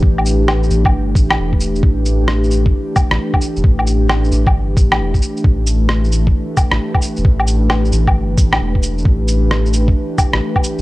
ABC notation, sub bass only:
X:1
M:4/4
L:1/16
Q:"Swing 16ths" 1/4=133
K:Ephr
V:1 name="Sub bass" clef=bass
A,,,6 A,,,2 G,,,2 A,,,2 E,,,4 | A,,,8 z3 A,,, z3 E,,, | A,,,6 A,,,2 G,,,2 A,,,2 E,,, A,,, z2 | A,,,8 z3 A,,, z3 E,,, |
A,,,6 A,,,2 G,,,2 A,,,2 E,,,4 | A,,,8 z3 A,,, z3 E,,, |]